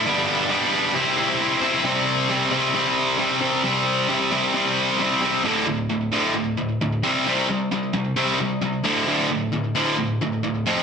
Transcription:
\new Staff \with { instrumentName = "Distorted electric guitar" } { \clef bass \time 4/4 \key c \major \tempo 4 = 133 <g, d g b d' g'>8 <g b d' g'>8 <g b d' g'>8 <g b d' g'>8 <c g c' e' g' c''>8 <c' e' g' c''>4 <c' e' g' c''>8 | <c g c'>4 <c g c'>8 <c g c'>8 <c g c'>4 <c g c'>8 <c g c'>8 | <c g c'>4 <c g c'>8 <c g c'>8 <c g c'>4 <c g c'>8 <c g c'>8 | <d, a, d>8 <d, a,>8 <d, a,>8 <d, a, d>8 <d, a,>8 <d, a,>8 <d, a,>8 <c g c'>8 |
<c g c'>8 <c g>8 <c g>8 <c g>8 <c g c'>8 <c g>8 <c g>8 <d, a, d>8 | <d, a, d>8 <d, a,>8 <d, a,>8 <d, a, d>8 <d, a,>8 <d, a,>8 <d, a,>8 <f, c f>8 | }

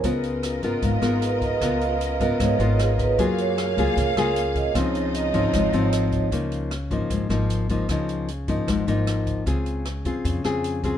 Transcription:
<<
  \new Staff \with { instrumentName = "Vibraphone" } { \time 4/4 \key des \major \tempo 4 = 153 r2 f''8 aes'8 ces''8 ees''8 | f''4. ees''8 des''8 f'8 aes'8 ces''8 | bes'8 des''8 r4 f''4. ees''8 | des''4 ees''8 des''8 r2 |
r1 | r1 | r1 | }
  \new Staff \with { instrumentName = "String section" } { \time 4/4 \key des \major <ces' f' bes' ees''>1~ | <ces' f' bes' ees''>1 | <bes aes' f''>1 | <ees' f' ees''>1 |
r1 | r1 | r1 | }
  \new Staff \with { instrumentName = "Nylon-string guitar" } { \time 4/4 \key des \major << { <ces' f' bes'>4. <ces' f' bes'>4 <ces' f' bes'>4. | <ces' f' bes'>4. <ces' f' bes'>4 <ces' f' bes'>4. | <bes f' aes'>4. <bes f' aes'>4 <bes f' aes'>4. | <f c' ees'>4. <f c' ees'>4 <f c' ees'>4. |
<f bes ees'>4 r8 <f bes ees'>4 <f bes ees'>4 <f bes ees'>8 | <f bes ees'>4 r8 <f bes ees'>4 <f bes ees'>4. | <c' f' aes'>4 r8 <c' f' aes'>4 <c' f' aes'>4 <c' f' aes'>8 | } \\ { des2 aes,2 | des2 aes,2 | ges2 des2 | des2 aes,2 |
des2 aes,2 | des2 aes,2 | des2 des2 | } >> }
  \new Staff \with { instrumentName = "Upright bass" } { \clef bass \time 4/4 \key des \major des,4. aes,,16 r16 aes,,8 aes,,4. | des,4. aes,,16 r16 aes,,8 aes,,4. | ges,4. des,16 r16 des,8 des,4. | des,4. aes,,16 r16 aes,,8 aes,,4. |
des,4. aes,,16 r16 aes,,8 aes,,4. | des,4. aes,,16 r16 aes,,8 aes,,4. | des,4. f,16 r16 f,8 f,4. | }
  \new DrumStaff \with { instrumentName = "Drums" } \drummode { \time 4/4 <hh bd>8 hh8 <hh ss>8 hh8 <hh bd>8 <hh ss>8 hh8 <hh bd>8 | <hh bd ss>8 hh8 hh8 <hh bd>8 <hh bd ss>8 hh8 <hh ss>8 <hh bd>8 | <hh bd>8 hh8 <hh ss>8 hh8 <hh bd>8 <hh ss>8 hh8 <hh bd>8 | <hh bd ss>8 hh8 hh8 <hh bd>8 <hh bd ss>8 hh8 <hh ss>8 <hh bd>8 |
<hh bd>8 hh8 <hh ss>8 <hh bd>8 <hh bd>8 <hh ss>8 hh8 <hh bd>8 | <hh bd ss>8 hh8 hh8 <hh bd>8 <hh bd ss>8 hh8 <hh ss>8 <hh bd>8 | <hh bd>8 hh8 <hh ss>8 <hh bd>8 <hh bd>8 <hh ss>8 hh8 <hh bd>8 | }
>>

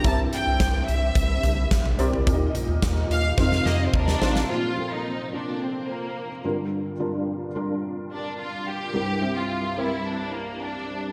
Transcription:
<<
  \new Staff \with { instrumentName = "Violin section" } { \time 4/4 \key bes \major \tempo 4 = 108 a''8 g''4 e''2 r8 | r4. f''8 f''8 <bes ees''>16. c''32 <d' bes'>4 | f'8. ees'8. d'8 c'8 bes4 r8 | r2 r8 d'8 f'8 g'8~ |
g'8. f'8. e'8 d'8 bes8 d'4 | }
  \new Staff \with { instrumentName = "Felt piano" } { \time 4/4 \key bes \major <c' e' g' bes' e''>4. r2 <c' e' g' bes' d''>8 | <ees' g' bes' d'' ees''>4. r8 <c' ees' f' bes' ees''>4. <c' ees' f' bes' f''>8 | <bes c' f' c''>8 <bes c' f' a'>4 <bes c' f' bes'>4. r8 <g d' f' bes'>8~ | <g d' f' bes'>8 <g d' f' bes'>4 <g d' f' bes'>4. r4 |
<g c' e' bes'>8 <g c' g' e''>4 <g c' e' bes'>4. r4 | }
  \new Staff \with { instrumentName = "Felt piano" } { \clef bass \time 4/4 \key bes \major g,4. r2 r8 | bes,4. r8 c4. r8 | <bes, f>2.~ <bes, f>8 <g, d>8~ | <g, d>2.~ <g, d>8 r8 |
<c, g,>1 | }
  \new Staff \with { instrumentName = "Analog synth bass" } { \clef bass \time 4/4 \key bes \major c,8 r16 c,16 c,8 c,8 c,8 c,8 bes,,8 c,8 | ees,8 r16 ees,16 ees,8 ees,8 f,8 f,8 ees,8 a,,8 | r1 | r1 |
r1 | }
  \new DrumStaff \with { instrumentName = "Drums" } \drummode { \time 4/4 <hh bd>8 hh8 <hh bd sn>8 hh8 <hh bd>8 <hh tomfh>8 <hh bd sn>16 tomfh16 hh16 tomfh16 | <hh bd>8 <hh tomfh>8 <hh bd sn>8 hh8 <bd sn>16 sn16 sn8 bd16 sn16 sn16 sn16 | r4 r4 r4 r4 | r4 r4 r4 r4 |
r4 r4 r4 r4 | }
>>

